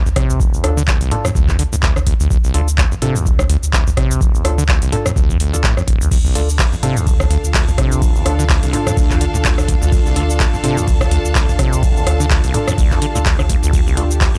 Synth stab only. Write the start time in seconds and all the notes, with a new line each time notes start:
0.64 D4 F4 A4
1.11 D4 F4 A4
2.54 D4 F4 A4
3.02 D4 F4 A4
4.45 D4 F4 A4
4.92 D4 F4 A4
5.53 D4 F4 A4
6.35 D4 F4 A4
6.83 D4 F4 A4
8.26 D4 F4 A4
8.73 D4 F4 A4
10.16 D4 F4 A4
10.64 D4 F4 A4
12.07 D4 F4 A4
12.54 D4 F4 A4
13.15 D4 F4 A4
13.97 D4 F4 A4